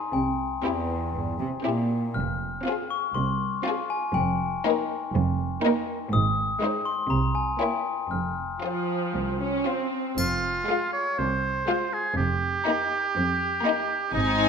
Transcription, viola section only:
0, 0, Header, 1, 2, 480
1, 0, Start_track
1, 0, Key_signature, -4, "minor"
1, 0, Tempo, 502092
1, 131, Time_signature, 4, 2, 24, 8
1, 4450, Tempo, 492611
1, 7330, Tempo, 510204
1, 10690, Tempo, 491400
1, 13918, End_track
2, 0, Start_track
2, 0, Title_t, "Viola section"
2, 0, Program_c, 0, 48
2, 607, Note_on_c, 0, 60, 40
2, 966, Note_off_c, 0, 60, 0
2, 1565, Note_on_c, 0, 60, 38
2, 1933, Note_off_c, 0, 60, 0
2, 2536, Note_on_c, 0, 60, 41
2, 2893, Note_off_c, 0, 60, 0
2, 3497, Note_on_c, 0, 60, 45
2, 3852, Note_off_c, 0, 60, 0
2, 4454, Note_on_c, 0, 58, 52
2, 4813, Note_off_c, 0, 58, 0
2, 5414, Note_on_c, 0, 58, 56
2, 5769, Note_off_c, 0, 58, 0
2, 6365, Note_on_c, 0, 56, 45
2, 6721, Note_off_c, 0, 56, 0
2, 7334, Note_on_c, 0, 58, 40
2, 7686, Note_off_c, 0, 58, 0
2, 8290, Note_on_c, 0, 53, 34
2, 8981, Note_off_c, 0, 53, 0
2, 9022, Note_on_c, 0, 61, 37
2, 9257, Note_off_c, 0, 61, 0
2, 9270, Note_on_c, 0, 60, 31
2, 9749, Note_off_c, 0, 60, 0
2, 10223, Note_on_c, 0, 56, 44
2, 10573, Note_off_c, 0, 56, 0
2, 11178, Note_on_c, 0, 56, 49
2, 11536, Note_off_c, 0, 56, 0
2, 12152, Note_on_c, 0, 58, 49
2, 12504, Note_off_c, 0, 58, 0
2, 13092, Note_on_c, 0, 58, 51
2, 13450, Note_off_c, 0, 58, 0
2, 13581, Note_on_c, 0, 60, 53
2, 13918, Note_off_c, 0, 60, 0
2, 13918, End_track
0, 0, End_of_file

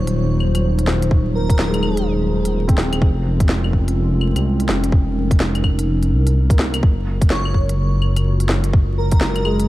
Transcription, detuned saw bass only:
0, 0, Header, 1, 2, 480
1, 0, Start_track
1, 0, Key_signature, -5, "minor"
1, 0, Tempo, 476190
1, 1124, Time_signature, 4, 2, 24, 8
1, 9757, End_track
2, 0, Start_track
2, 0, Title_t, "Detuned saw bass"
2, 0, Program_c, 0, 39
2, 0, Note_on_c, 0, 27, 100
2, 1112, Note_off_c, 0, 27, 0
2, 1121, Note_on_c, 0, 27, 99
2, 3031, Note_off_c, 0, 27, 0
2, 3042, Note_on_c, 0, 29, 97
2, 4373, Note_off_c, 0, 29, 0
2, 4395, Note_on_c, 0, 36, 84
2, 4714, Note_off_c, 0, 36, 0
2, 4727, Note_on_c, 0, 29, 92
2, 4951, Note_off_c, 0, 29, 0
2, 4962, Note_on_c, 0, 29, 101
2, 6167, Note_on_c, 0, 36, 86
2, 6182, Note_off_c, 0, 29, 0
2, 6634, Note_off_c, 0, 36, 0
2, 6647, Note_on_c, 0, 36, 90
2, 6871, Note_off_c, 0, 36, 0
2, 6883, Note_on_c, 0, 30, 95
2, 8792, Note_off_c, 0, 30, 0
2, 8805, Note_on_c, 0, 30, 102
2, 9757, Note_off_c, 0, 30, 0
2, 9757, End_track
0, 0, End_of_file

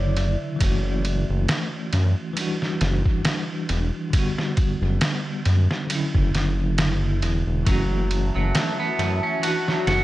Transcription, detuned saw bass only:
0, 0, Header, 1, 2, 480
1, 0, Start_track
1, 0, Tempo, 882353
1, 332, Time_signature, 4, 2, 24, 8
1, 5461, End_track
2, 0, Start_track
2, 0, Title_t, "Detuned saw bass"
2, 0, Program_c, 0, 39
2, 0, Note_on_c, 0, 30, 75
2, 199, Note_off_c, 0, 30, 0
2, 329, Note_on_c, 0, 30, 98
2, 679, Note_off_c, 0, 30, 0
2, 704, Note_on_c, 0, 30, 95
2, 798, Note_off_c, 0, 30, 0
2, 1050, Note_on_c, 0, 42, 83
2, 1169, Note_off_c, 0, 42, 0
2, 1529, Note_on_c, 0, 30, 96
2, 1648, Note_off_c, 0, 30, 0
2, 2009, Note_on_c, 0, 28, 72
2, 2128, Note_off_c, 0, 28, 0
2, 2619, Note_on_c, 0, 30, 92
2, 2716, Note_off_c, 0, 30, 0
2, 2969, Note_on_c, 0, 42, 78
2, 3088, Note_off_c, 0, 42, 0
2, 3345, Note_on_c, 0, 30, 80
2, 3439, Note_off_c, 0, 30, 0
2, 3447, Note_on_c, 0, 30, 70
2, 3925, Note_off_c, 0, 30, 0
2, 3928, Note_on_c, 0, 28, 89
2, 4048, Note_off_c, 0, 28, 0
2, 4063, Note_on_c, 0, 28, 82
2, 4158, Note_off_c, 0, 28, 0
2, 4172, Note_on_c, 0, 30, 86
2, 4520, Note_off_c, 0, 30, 0
2, 4544, Note_on_c, 0, 30, 93
2, 4638, Note_off_c, 0, 30, 0
2, 4891, Note_on_c, 0, 42, 78
2, 5009, Note_off_c, 0, 42, 0
2, 5370, Note_on_c, 0, 30, 92
2, 5461, Note_off_c, 0, 30, 0
2, 5461, End_track
0, 0, End_of_file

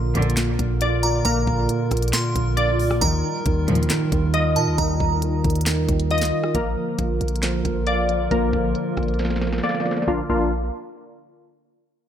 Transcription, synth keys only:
0, 0, Header, 1, 2, 480
1, 0, Start_track
1, 0, Key_signature, -2, "major"
1, 0, Tempo, 441176
1, 1363, Time_signature, 4, 2, 24, 8
1, 13148, End_track
2, 0, Start_track
2, 0, Title_t, "Synth keys"
2, 0, Program_c, 0, 88
2, 0, Note_on_c, 0, 58, 83
2, 889, Note_on_c, 0, 74, 96
2, 1349, Note_off_c, 0, 58, 0
2, 1363, Note_on_c, 0, 58, 103
2, 2782, Note_off_c, 0, 74, 0
2, 2795, Note_on_c, 0, 74, 102
2, 3279, Note_off_c, 0, 74, 0
2, 3279, Note_on_c, 0, 51, 90
2, 3283, Note_off_c, 0, 58, 0
2, 4721, Note_on_c, 0, 75, 96
2, 5196, Note_off_c, 0, 51, 0
2, 5209, Note_on_c, 0, 51, 91
2, 6635, Note_off_c, 0, 75, 0
2, 6648, Note_on_c, 0, 75, 96
2, 7126, Note_off_c, 0, 51, 0
2, 7126, Note_off_c, 0, 75, 0
2, 7129, Note_on_c, 0, 58, 92
2, 8562, Note_on_c, 0, 74, 95
2, 9031, Note_off_c, 0, 58, 0
2, 9044, Note_on_c, 0, 58, 99
2, 10469, Note_off_c, 0, 74, 0
2, 10482, Note_on_c, 0, 74, 102
2, 10949, Note_off_c, 0, 58, 0
2, 10962, Note_off_c, 0, 74, 0
2, 10962, Note_on_c, 0, 58, 84
2, 10963, Note_on_c, 0, 62, 78
2, 10963, Note_on_c, 0, 65, 92
2, 11097, Note_off_c, 0, 58, 0
2, 11097, Note_off_c, 0, 62, 0
2, 11097, Note_off_c, 0, 65, 0
2, 11202, Note_on_c, 0, 62, 82
2, 11202, Note_on_c, 0, 65, 102
2, 11203, Note_on_c, 0, 58, 91
2, 11426, Note_off_c, 0, 58, 0
2, 11426, Note_off_c, 0, 62, 0
2, 11426, Note_off_c, 0, 65, 0
2, 13148, End_track
0, 0, End_of_file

